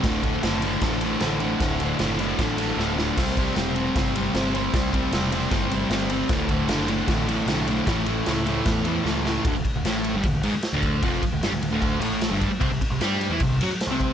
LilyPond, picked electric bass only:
\new Staff \with { instrumentName = "Picked electric bass" } { \clef bass \time 4/4 \key d \mixolydian \tempo 4 = 153 d,,4 fis,,4 a,,4 a,,4 | d,,4 fis,,4 a,,4 d,,4 | c,4 e,,4 g,,4 g,,4 | c,4 e,,4 g,,4 g,,4 |
d,,4 fis,,4 a,,4 b,,4 | a,,4 cis,4 e,4 cis,4 | d,,16 d,,16 r16 d,,16 a,,8. g,,16 d,,16 d,,16 gis,,16 r8 d,,8. | f,,8 r16 d,,16 g,,16 d,,16 d,,16 d,,8. a,,8. g,,8 r16 |
c,16 c,16 r16 c,16 g,8. e,16 c,16 c,16 fis,16 r8 c,8. | }